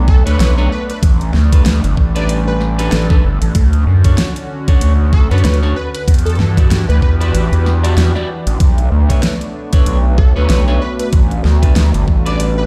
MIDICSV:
0, 0, Header, 1, 7, 480
1, 0, Start_track
1, 0, Key_signature, 2, "minor"
1, 0, Tempo, 631579
1, 780, Time_signature, 4, 2, 24, 8
1, 9624, End_track
2, 0, Start_track
2, 0, Title_t, "Ambient pad"
2, 0, Program_c, 0, 92
2, 6541, Note_on_c, 0, 59, 96
2, 6806, Note_on_c, 0, 73, 86
2, 7070, Note_on_c, 0, 66, 91
2, 8457, Note_on_c, 0, 69, 86
2, 8719, Note_on_c, 0, 76, 78
2, 8931, Note_on_c, 0, 83, 87
2, 9164, Note_off_c, 0, 73, 0
2, 9236, Note_off_c, 0, 59, 0
2, 9241, Note_off_c, 0, 66, 0
2, 9624, Note_off_c, 0, 69, 0
2, 9624, Note_off_c, 0, 76, 0
2, 9624, Note_off_c, 0, 83, 0
2, 9624, End_track
3, 0, Start_track
3, 0, Title_t, "Digital synth lead"
3, 0, Program_c, 1, 84
3, 61, Note_on_c, 1, 69, 94
3, 171, Note_off_c, 1, 69, 0
3, 204, Note_on_c, 1, 71, 89
3, 266, Note_off_c, 1, 71, 0
3, 309, Note_on_c, 1, 71, 80
3, 393, Note_off_c, 1, 71, 0
3, 548, Note_on_c, 1, 71, 90
3, 632, Note_off_c, 1, 71, 0
3, 688, Note_on_c, 1, 71, 75
3, 748, Note_off_c, 1, 71, 0
3, 1641, Note_on_c, 1, 74, 92
3, 1770, Note_off_c, 1, 74, 0
3, 1882, Note_on_c, 1, 71, 96
3, 2010, Note_off_c, 1, 71, 0
3, 2124, Note_on_c, 1, 69, 97
3, 2758, Note_off_c, 1, 69, 0
3, 3904, Note_on_c, 1, 69, 94
3, 4013, Note_off_c, 1, 69, 0
3, 4038, Note_on_c, 1, 71, 88
3, 4103, Note_off_c, 1, 71, 0
3, 4132, Note_on_c, 1, 71, 78
3, 4224, Note_off_c, 1, 71, 0
3, 4379, Note_on_c, 1, 71, 91
3, 4468, Note_off_c, 1, 71, 0
3, 4516, Note_on_c, 1, 71, 76
3, 4582, Note_off_c, 1, 71, 0
3, 4753, Note_on_c, 1, 69, 96
3, 5097, Note_off_c, 1, 69, 0
3, 5234, Note_on_c, 1, 71, 90
3, 5301, Note_off_c, 1, 71, 0
3, 5338, Note_on_c, 1, 71, 77
3, 5428, Note_off_c, 1, 71, 0
3, 5476, Note_on_c, 1, 71, 101
3, 6141, Note_off_c, 1, 71, 0
3, 7737, Note_on_c, 1, 69, 95
3, 7849, Note_off_c, 1, 69, 0
3, 7874, Note_on_c, 1, 71, 89
3, 7941, Note_off_c, 1, 71, 0
3, 7974, Note_on_c, 1, 71, 80
3, 8065, Note_off_c, 1, 71, 0
3, 8220, Note_on_c, 1, 71, 91
3, 8309, Note_off_c, 1, 71, 0
3, 8357, Note_on_c, 1, 71, 77
3, 8423, Note_off_c, 1, 71, 0
3, 9319, Note_on_c, 1, 74, 93
3, 9449, Note_off_c, 1, 74, 0
3, 9560, Note_on_c, 1, 71, 94
3, 9624, Note_off_c, 1, 71, 0
3, 9624, End_track
4, 0, Start_track
4, 0, Title_t, "Clean electric guitar"
4, 0, Program_c, 2, 27
4, 196, Note_on_c, 2, 73, 109
4, 198, Note_on_c, 2, 71, 85
4, 202, Note_on_c, 2, 69, 84
4, 205, Note_on_c, 2, 62, 90
4, 405, Note_off_c, 2, 62, 0
4, 405, Note_off_c, 2, 69, 0
4, 405, Note_off_c, 2, 71, 0
4, 405, Note_off_c, 2, 73, 0
4, 438, Note_on_c, 2, 73, 99
4, 440, Note_on_c, 2, 71, 86
4, 444, Note_on_c, 2, 69, 77
4, 446, Note_on_c, 2, 62, 85
4, 539, Note_off_c, 2, 62, 0
4, 539, Note_off_c, 2, 69, 0
4, 539, Note_off_c, 2, 71, 0
4, 539, Note_off_c, 2, 73, 0
4, 1159, Note_on_c, 2, 71, 81
4, 1161, Note_on_c, 2, 69, 70
4, 1165, Note_on_c, 2, 67, 65
4, 1169, Note_on_c, 2, 62, 71
4, 1340, Note_off_c, 2, 62, 0
4, 1340, Note_off_c, 2, 67, 0
4, 1340, Note_off_c, 2, 69, 0
4, 1341, Note_off_c, 2, 71, 0
4, 1636, Note_on_c, 2, 71, 106
4, 1639, Note_on_c, 2, 69, 86
4, 1643, Note_on_c, 2, 67, 81
4, 1646, Note_on_c, 2, 62, 95
4, 1819, Note_off_c, 2, 62, 0
4, 1819, Note_off_c, 2, 69, 0
4, 1819, Note_off_c, 2, 71, 0
4, 1820, Note_off_c, 2, 67, 0
4, 2116, Note_on_c, 2, 71, 108
4, 2119, Note_on_c, 2, 69, 84
4, 2123, Note_on_c, 2, 67, 90
4, 2127, Note_on_c, 2, 62, 84
4, 2325, Note_off_c, 2, 69, 0
4, 2326, Note_off_c, 2, 62, 0
4, 2326, Note_off_c, 2, 67, 0
4, 2326, Note_off_c, 2, 71, 0
4, 2357, Note_on_c, 2, 71, 96
4, 2362, Note_on_c, 2, 69, 81
4, 2363, Note_on_c, 2, 67, 79
4, 2367, Note_on_c, 2, 62, 83
4, 2459, Note_off_c, 2, 62, 0
4, 2459, Note_off_c, 2, 67, 0
4, 2459, Note_off_c, 2, 69, 0
4, 2459, Note_off_c, 2, 71, 0
4, 3075, Note_on_c, 2, 73, 85
4, 3081, Note_on_c, 2, 69, 72
4, 3086, Note_on_c, 2, 66, 62
4, 3090, Note_on_c, 2, 62, 67
4, 3260, Note_off_c, 2, 62, 0
4, 3260, Note_off_c, 2, 66, 0
4, 3260, Note_off_c, 2, 69, 0
4, 3260, Note_off_c, 2, 73, 0
4, 3559, Note_on_c, 2, 73, 102
4, 3561, Note_on_c, 2, 69, 87
4, 3565, Note_on_c, 2, 66, 80
4, 3567, Note_on_c, 2, 62, 78
4, 3740, Note_off_c, 2, 62, 0
4, 3740, Note_off_c, 2, 69, 0
4, 3741, Note_off_c, 2, 66, 0
4, 3741, Note_off_c, 2, 73, 0
4, 4036, Note_on_c, 2, 73, 101
4, 4040, Note_on_c, 2, 69, 95
4, 4044, Note_on_c, 2, 66, 85
4, 4047, Note_on_c, 2, 62, 91
4, 4246, Note_off_c, 2, 62, 0
4, 4246, Note_off_c, 2, 66, 0
4, 4246, Note_off_c, 2, 69, 0
4, 4246, Note_off_c, 2, 73, 0
4, 4276, Note_on_c, 2, 73, 104
4, 4279, Note_on_c, 2, 69, 80
4, 4282, Note_on_c, 2, 66, 73
4, 4285, Note_on_c, 2, 62, 80
4, 4378, Note_off_c, 2, 62, 0
4, 4378, Note_off_c, 2, 66, 0
4, 4378, Note_off_c, 2, 69, 0
4, 4378, Note_off_c, 2, 73, 0
4, 4994, Note_on_c, 2, 64, 75
4, 4998, Note_on_c, 2, 74, 84
4, 5002, Note_on_c, 2, 67, 62
4, 5004, Note_on_c, 2, 66, 61
4, 5178, Note_off_c, 2, 66, 0
4, 5179, Note_off_c, 2, 64, 0
4, 5179, Note_off_c, 2, 67, 0
4, 5179, Note_off_c, 2, 74, 0
4, 5475, Note_on_c, 2, 64, 92
4, 5477, Note_on_c, 2, 74, 103
4, 5481, Note_on_c, 2, 67, 78
4, 5483, Note_on_c, 2, 66, 79
4, 5658, Note_off_c, 2, 64, 0
4, 5658, Note_off_c, 2, 66, 0
4, 5658, Note_off_c, 2, 74, 0
4, 5659, Note_off_c, 2, 67, 0
4, 5955, Note_on_c, 2, 64, 99
4, 5957, Note_on_c, 2, 74, 107
4, 5960, Note_on_c, 2, 67, 85
4, 5963, Note_on_c, 2, 66, 82
4, 6164, Note_off_c, 2, 66, 0
4, 6164, Note_off_c, 2, 67, 0
4, 6164, Note_off_c, 2, 74, 0
4, 6165, Note_off_c, 2, 64, 0
4, 6195, Note_on_c, 2, 64, 92
4, 6199, Note_on_c, 2, 74, 103
4, 6201, Note_on_c, 2, 67, 75
4, 6204, Note_on_c, 2, 66, 73
4, 6297, Note_off_c, 2, 66, 0
4, 6297, Note_off_c, 2, 67, 0
4, 6297, Note_off_c, 2, 74, 0
4, 6298, Note_off_c, 2, 64, 0
4, 6911, Note_on_c, 2, 73, 84
4, 6915, Note_on_c, 2, 71, 68
4, 6920, Note_on_c, 2, 69, 63
4, 6922, Note_on_c, 2, 62, 71
4, 7097, Note_off_c, 2, 62, 0
4, 7097, Note_off_c, 2, 69, 0
4, 7097, Note_off_c, 2, 71, 0
4, 7097, Note_off_c, 2, 73, 0
4, 7393, Note_on_c, 2, 73, 105
4, 7395, Note_on_c, 2, 71, 87
4, 7398, Note_on_c, 2, 69, 88
4, 7401, Note_on_c, 2, 62, 91
4, 7577, Note_off_c, 2, 62, 0
4, 7577, Note_off_c, 2, 73, 0
4, 7578, Note_off_c, 2, 69, 0
4, 7578, Note_off_c, 2, 71, 0
4, 7872, Note_on_c, 2, 73, 111
4, 7876, Note_on_c, 2, 71, 88
4, 7877, Note_on_c, 2, 69, 85
4, 7880, Note_on_c, 2, 62, 86
4, 8083, Note_off_c, 2, 62, 0
4, 8083, Note_off_c, 2, 69, 0
4, 8083, Note_off_c, 2, 73, 0
4, 8084, Note_off_c, 2, 71, 0
4, 8114, Note_on_c, 2, 73, 107
4, 8117, Note_on_c, 2, 71, 82
4, 8119, Note_on_c, 2, 69, 71
4, 8124, Note_on_c, 2, 62, 81
4, 8217, Note_off_c, 2, 62, 0
4, 8217, Note_off_c, 2, 69, 0
4, 8217, Note_off_c, 2, 71, 0
4, 8217, Note_off_c, 2, 73, 0
4, 8834, Note_on_c, 2, 71, 77
4, 8837, Note_on_c, 2, 69, 72
4, 8842, Note_on_c, 2, 67, 67
4, 8846, Note_on_c, 2, 62, 67
4, 9018, Note_off_c, 2, 62, 0
4, 9018, Note_off_c, 2, 67, 0
4, 9018, Note_off_c, 2, 69, 0
4, 9018, Note_off_c, 2, 71, 0
4, 9315, Note_on_c, 2, 71, 107
4, 9318, Note_on_c, 2, 69, 76
4, 9321, Note_on_c, 2, 67, 88
4, 9326, Note_on_c, 2, 62, 84
4, 9498, Note_off_c, 2, 62, 0
4, 9498, Note_off_c, 2, 67, 0
4, 9499, Note_off_c, 2, 69, 0
4, 9499, Note_off_c, 2, 71, 0
4, 9624, End_track
5, 0, Start_track
5, 0, Title_t, "Analog synth pad"
5, 0, Program_c, 3, 89
5, 0, Note_on_c, 3, 57, 88
5, 0, Note_on_c, 3, 59, 84
5, 0, Note_on_c, 3, 62, 80
5, 762, Note_off_c, 3, 59, 0
5, 775, Note_on_c, 3, 55, 89
5, 2669, Note_off_c, 3, 57, 0
5, 2672, Note_off_c, 3, 62, 0
5, 2678, Note_off_c, 3, 55, 0
5, 2703, Note_on_c, 3, 61, 81
5, 2703, Note_on_c, 3, 66, 98
5, 2704, Note_on_c, 3, 50, 86
5, 4602, Note_off_c, 3, 61, 0
5, 4602, Note_off_c, 3, 66, 0
5, 4603, Note_off_c, 3, 50, 0
5, 4612, Note_on_c, 3, 62, 83
5, 4613, Note_on_c, 3, 52, 89
5, 4614, Note_on_c, 3, 66, 80
5, 4617, Note_on_c, 3, 67, 101
5, 6517, Note_off_c, 3, 52, 0
5, 6518, Note_off_c, 3, 66, 0
5, 6519, Note_off_c, 3, 67, 0
5, 6536, Note_on_c, 3, 59, 81
5, 6539, Note_on_c, 3, 57, 88
5, 8439, Note_off_c, 3, 59, 0
5, 8461, Note_on_c, 3, 55, 91
5, 9624, Note_off_c, 3, 55, 0
5, 9624, Note_off_c, 3, 57, 0
5, 9624, Note_off_c, 3, 62, 0
5, 9624, End_track
6, 0, Start_track
6, 0, Title_t, "Analog synth bass"
6, 0, Program_c, 4, 38
6, 0, Note_on_c, 4, 35, 98
6, 178, Note_off_c, 4, 35, 0
6, 200, Note_on_c, 4, 38, 100
6, 284, Note_off_c, 4, 38, 0
6, 302, Note_on_c, 4, 35, 99
6, 525, Note_off_c, 4, 35, 0
6, 780, Note_on_c, 4, 33, 98
6, 1003, Note_off_c, 4, 33, 0
6, 1020, Note_on_c, 4, 38, 98
6, 1243, Note_off_c, 4, 38, 0
6, 1259, Note_on_c, 4, 38, 98
6, 1376, Note_off_c, 4, 38, 0
6, 1398, Note_on_c, 4, 31, 95
6, 1484, Note_off_c, 4, 31, 0
6, 1500, Note_on_c, 4, 33, 97
6, 2204, Note_off_c, 4, 33, 0
6, 2219, Note_on_c, 4, 33, 102
6, 2443, Note_off_c, 4, 33, 0
6, 2459, Note_on_c, 4, 31, 99
6, 2576, Note_off_c, 4, 31, 0
6, 2597, Note_on_c, 4, 33, 96
6, 2683, Note_off_c, 4, 33, 0
6, 2699, Note_on_c, 4, 38, 100
6, 2923, Note_off_c, 4, 38, 0
6, 2939, Note_on_c, 4, 42, 99
6, 3163, Note_off_c, 4, 42, 0
6, 3658, Note_on_c, 4, 38, 99
6, 4016, Note_off_c, 4, 38, 0
6, 4036, Note_on_c, 4, 42, 101
6, 4122, Note_off_c, 4, 42, 0
6, 4137, Note_on_c, 4, 38, 100
6, 4362, Note_off_c, 4, 38, 0
6, 4619, Note_on_c, 4, 40, 97
6, 4843, Note_off_c, 4, 40, 0
6, 4855, Note_on_c, 4, 43, 99
6, 5081, Note_off_c, 4, 43, 0
6, 5097, Note_on_c, 4, 43, 96
6, 5215, Note_off_c, 4, 43, 0
6, 5239, Note_on_c, 4, 38, 97
6, 5324, Note_off_c, 4, 38, 0
6, 5337, Note_on_c, 4, 40, 97
6, 5562, Note_off_c, 4, 40, 0
6, 5579, Note_on_c, 4, 33, 96
6, 5696, Note_off_c, 4, 33, 0
6, 5716, Note_on_c, 4, 40, 98
6, 6042, Note_off_c, 4, 40, 0
6, 6056, Note_on_c, 4, 40, 102
6, 6174, Note_off_c, 4, 40, 0
6, 6435, Note_on_c, 4, 33, 97
6, 6522, Note_off_c, 4, 33, 0
6, 6539, Note_on_c, 4, 35, 96
6, 6763, Note_off_c, 4, 35, 0
6, 6776, Note_on_c, 4, 38, 100
6, 7001, Note_off_c, 4, 38, 0
6, 7498, Note_on_c, 4, 35, 100
6, 7856, Note_off_c, 4, 35, 0
6, 7876, Note_on_c, 4, 38, 100
6, 7962, Note_off_c, 4, 38, 0
6, 7977, Note_on_c, 4, 35, 100
6, 8202, Note_off_c, 4, 35, 0
6, 8459, Note_on_c, 4, 33, 97
6, 8683, Note_off_c, 4, 33, 0
6, 8700, Note_on_c, 4, 38, 97
6, 8924, Note_off_c, 4, 38, 0
6, 8941, Note_on_c, 4, 38, 99
6, 9057, Note_off_c, 4, 38, 0
6, 9080, Note_on_c, 4, 31, 98
6, 9164, Note_off_c, 4, 31, 0
6, 9178, Note_on_c, 4, 33, 98
6, 9624, Note_off_c, 4, 33, 0
6, 9624, End_track
7, 0, Start_track
7, 0, Title_t, "Drums"
7, 60, Note_on_c, 9, 36, 111
7, 136, Note_off_c, 9, 36, 0
7, 203, Note_on_c, 9, 42, 53
7, 279, Note_off_c, 9, 42, 0
7, 306, Note_on_c, 9, 38, 115
7, 306, Note_on_c, 9, 42, 64
7, 382, Note_off_c, 9, 38, 0
7, 382, Note_off_c, 9, 42, 0
7, 443, Note_on_c, 9, 40, 39
7, 519, Note_off_c, 9, 40, 0
7, 681, Note_on_c, 9, 42, 50
7, 757, Note_off_c, 9, 42, 0
7, 780, Note_on_c, 9, 36, 117
7, 781, Note_on_c, 9, 42, 68
7, 856, Note_off_c, 9, 36, 0
7, 857, Note_off_c, 9, 42, 0
7, 920, Note_on_c, 9, 42, 36
7, 996, Note_off_c, 9, 42, 0
7, 1019, Note_on_c, 9, 38, 58
7, 1095, Note_off_c, 9, 38, 0
7, 1159, Note_on_c, 9, 36, 100
7, 1160, Note_on_c, 9, 42, 53
7, 1235, Note_off_c, 9, 36, 0
7, 1236, Note_off_c, 9, 42, 0
7, 1260, Note_on_c, 9, 38, 119
7, 1260, Note_on_c, 9, 42, 64
7, 1336, Note_off_c, 9, 38, 0
7, 1336, Note_off_c, 9, 42, 0
7, 1399, Note_on_c, 9, 42, 38
7, 1475, Note_off_c, 9, 42, 0
7, 1500, Note_on_c, 9, 36, 58
7, 1576, Note_off_c, 9, 36, 0
7, 1639, Note_on_c, 9, 42, 51
7, 1715, Note_off_c, 9, 42, 0
7, 1742, Note_on_c, 9, 42, 65
7, 1818, Note_off_c, 9, 42, 0
7, 1981, Note_on_c, 9, 40, 53
7, 2057, Note_off_c, 9, 40, 0
7, 2120, Note_on_c, 9, 42, 54
7, 2196, Note_off_c, 9, 42, 0
7, 2220, Note_on_c, 9, 38, 115
7, 2220, Note_on_c, 9, 42, 65
7, 2296, Note_off_c, 9, 38, 0
7, 2296, Note_off_c, 9, 42, 0
7, 2357, Note_on_c, 9, 36, 107
7, 2359, Note_on_c, 9, 40, 41
7, 2433, Note_off_c, 9, 36, 0
7, 2435, Note_off_c, 9, 40, 0
7, 2597, Note_on_c, 9, 42, 52
7, 2673, Note_off_c, 9, 42, 0
7, 2697, Note_on_c, 9, 42, 67
7, 2698, Note_on_c, 9, 36, 111
7, 2773, Note_off_c, 9, 42, 0
7, 2774, Note_off_c, 9, 36, 0
7, 2836, Note_on_c, 9, 42, 37
7, 2912, Note_off_c, 9, 42, 0
7, 3074, Note_on_c, 9, 42, 54
7, 3077, Note_on_c, 9, 36, 59
7, 3150, Note_off_c, 9, 42, 0
7, 3153, Note_off_c, 9, 36, 0
7, 3177, Note_on_c, 9, 38, 115
7, 3177, Note_on_c, 9, 42, 68
7, 3253, Note_off_c, 9, 38, 0
7, 3253, Note_off_c, 9, 42, 0
7, 3315, Note_on_c, 9, 42, 38
7, 3391, Note_off_c, 9, 42, 0
7, 3556, Note_on_c, 9, 42, 51
7, 3557, Note_on_c, 9, 36, 105
7, 3632, Note_off_c, 9, 42, 0
7, 3633, Note_off_c, 9, 36, 0
7, 3658, Note_on_c, 9, 42, 67
7, 3734, Note_off_c, 9, 42, 0
7, 3898, Note_on_c, 9, 36, 106
7, 3974, Note_off_c, 9, 36, 0
7, 4038, Note_on_c, 9, 42, 24
7, 4088, Note_off_c, 9, 42, 0
7, 4088, Note_on_c, 9, 42, 30
7, 4140, Note_off_c, 9, 42, 0
7, 4140, Note_on_c, 9, 38, 112
7, 4140, Note_on_c, 9, 42, 65
7, 4208, Note_off_c, 9, 42, 0
7, 4208, Note_on_c, 9, 42, 43
7, 4216, Note_off_c, 9, 38, 0
7, 4279, Note_on_c, 9, 40, 42
7, 4284, Note_off_c, 9, 42, 0
7, 4355, Note_off_c, 9, 40, 0
7, 4519, Note_on_c, 9, 42, 52
7, 4595, Note_off_c, 9, 42, 0
7, 4618, Note_on_c, 9, 36, 114
7, 4620, Note_on_c, 9, 42, 68
7, 4666, Note_off_c, 9, 42, 0
7, 4666, Note_on_c, 9, 42, 53
7, 4694, Note_off_c, 9, 36, 0
7, 4701, Note_off_c, 9, 42, 0
7, 4701, Note_on_c, 9, 42, 46
7, 4761, Note_off_c, 9, 42, 0
7, 4761, Note_on_c, 9, 42, 38
7, 4784, Note_off_c, 9, 42, 0
7, 4784, Note_on_c, 9, 42, 29
7, 4829, Note_off_c, 9, 42, 0
7, 4829, Note_on_c, 9, 42, 24
7, 4863, Note_on_c, 9, 38, 59
7, 4863, Note_on_c, 9, 40, 38
7, 4905, Note_off_c, 9, 42, 0
7, 4939, Note_off_c, 9, 38, 0
7, 4939, Note_off_c, 9, 40, 0
7, 4996, Note_on_c, 9, 36, 105
7, 5001, Note_on_c, 9, 42, 54
7, 5072, Note_off_c, 9, 36, 0
7, 5077, Note_off_c, 9, 42, 0
7, 5102, Note_on_c, 9, 38, 118
7, 5102, Note_on_c, 9, 42, 69
7, 5178, Note_off_c, 9, 38, 0
7, 5178, Note_off_c, 9, 42, 0
7, 5242, Note_on_c, 9, 42, 38
7, 5318, Note_off_c, 9, 42, 0
7, 5338, Note_on_c, 9, 36, 59
7, 5414, Note_off_c, 9, 36, 0
7, 5483, Note_on_c, 9, 42, 54
7, 5559, Note_off_c, 9, 42, 0
7, 5583, Note_on_c, 9, 42, 67
7, 5659, Note_off_c, 9, 42, 0
7, 5722, Note_on_c, 9, 42, 39
7, 5798, Note_off_c, 9, 42, 0
7, 5824, Note_on_c, 9, 40, 56
7, 5900, Note_off_c, 9, 40, 0
7, 5962, Note_on_c, 9, 42, 55
7, 6038, Note_off_c, 9, 42, 0
7, 6062, Note_on_c, 9, 38, 115
7, 6062, Note_on_c, 9, 42, 70
7, 6138, Note_off_c, 9, 38, 0
7, 6138, Note_off_c, 9, 42, 0
7, 6199, Note_on_c, 9, 40, 43
7, 6275, Note_off_c, 9, 40, 0
7, 6436, Note_on_c, 9, 42, 54
7, 6512, Note_off_c, 9, 42, 0
7, 6537, Note_on_c, 9, 42, 71
7, 6538, Note_on_c, 9, 36, 116
7, 6613, Note_off_c, 9, 42, 0
7, 6614, Note_off_c, 9, 36, 0
7, 6674, Note_on_c, 9, 42, 39
7, 6750, Note_off_c, 9, 42, 0
7, 6915, Note_on_c, 9, 42, 56
7, 6916, Note_on_c, 9, 36, 63
7, 6991, Note_off_c, 9, 42, 0
7, 6992, Note_off_c, 9, 36, 0
7, 7015, Note_on_c, 9, 38, 118
7, 7015, Note_on_c, 9, 42, 71
7, 7091, Note_off_c, 9, 38, 0
7, 7091, Note_off_c, 9, 42, 0
7, 7153, Note_on_c, 9, 42, 40
7, 7229, Note_off_c, 9, 42, 0
7, 7392, Note_on_c, 9, 42, 56
7, 7396, Note_on_c, 9, 36, 109
7, 7468, Note_off_c, 9, 42, 0
7, 7472, Note_off_c, 9, 36, 0
7, 7496, Note_on_c, 9, 42, 71
7, 7572, Note_off_c, 9, 42, 0
7, 7737, Note_on_c, 9, 36, 112
7, 7813, Note_off_c, 9, 36, 0
7, 7978, Note_on_c, 9, 38, 118
7, 7978, Note_on_c, 9, 42, 71
7, 8054, Note_off_c, 9, 38, 0
7, 8054, Note_off_c, 9, 42, 0
7, 8116, Note_on_c, 9, 40, 43
7, 8192, Note_off_c, 9, 40, 0
7, 8356, Note_on_c, 9, 42, 57
7, 8432, Note_off_c, 9, 42, 0
7, 8456, Note_on_c, 9, 42, 70
7, 8458, Note_on_c, 9, 36, 124
7, 8532, Note_off_c, 9, 42, 0
7, 8534, Note_off_c, 9, 36, 0
7, 8598, Note_on_c, 9, 42, 39
7, 8674, Note_off_c, 9, 42, 0
7, 8701, Note_on_c, 9, 38, 65
7, 8777, Note_off_c, 9, 38, 0
7, 8837, Note_on_c, 9, 36, 110
7, 8838, Note_on_c, 9, 42, 57
7, 8913, Note_off_c, 9, 36, 0
7, 8914, Note_off_c, 9, 42, 0
7, 8939, Note_on_c, 9, 38, 125
7, 8939, Note_on_c, 9, 42, 69
7, 9015, Note_off_c, 9, 38, 0
7, 9015, Note_off_c, 9, 42, 0
7, 9077, Note_on_c, 9, 42, 41
7, 9153, Note_off_c, 9, 42, 0
7, 9179, Note_on_c, 9, 36, 65
7, 9255, Note_off_c, 9, 36, 0
7, 9320, Note_on_c, 9, 42, 57
7, 9396, Note_off_c, 9, 42, 0
7, 9423, Note_on_c, 9, 42, 73
7, 9499, Note_off_c, 9, 42, 0
7, 9624, End_track
0, 0, End_of_file